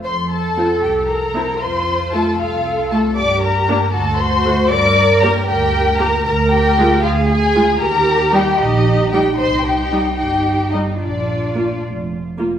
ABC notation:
X:1
M:6/8
L:1/16
Q:3/8=77
K:F
V:1 name="Violin section"
c'2 a4 g2 b4 | c'4 a2 f4 a2 | d'2 b4 a2 c'4 | d'4 b2 g4 b2 |
[K:Bbmix] b2 g4 f2 a4 | b4 g2 e4 g2 | c'2 g4 g4 e2 | d6 z6 |]
V:2 name="Violin section"
c2 A4 G2 B4 | c4 A2 F4 A2 | d2 B4 A2 c4 | d4 B2 G4 B2 |
[K:Bbmix] B2 G4 F2 A4 | B4 G2 E4 G2 | c2 G4 G4 E2 | D6 z6 |]
V:3 name="Cello section"
A12 | F6 A6 | G6 ^F6 | B6 B6 |
[K:Bbmix] B6 A6 | G12 | E12 | F8- F z3 |]
V:4 name="Viola section"
z4 [CF] z4 z [CE] z | z4 [A,F] z4 z [A,F] z | z4 [B,D] z4 z [A,^F] z | z4 [B,G] z4 z [B,G] z |
[K:Bbmix] z4 [A,F] z4 z [A,F] z | z4 [G,E] z4 z [G,E] z | z4 [G,E] z4 z [G,E] z | z4 [B,F] z4 z [B,F] z |]
V:5 name="Double bass section" clef=bass
F,,6 C,,6 | F,,6 C,,6 | G,,6 D,,6 | G,,6 D,,6 |
[K:Bbmix] D,,6 D,,6 | E,,6 B,,,6 | C,,6 G,,,6 | B,,,6 F,,,6 |]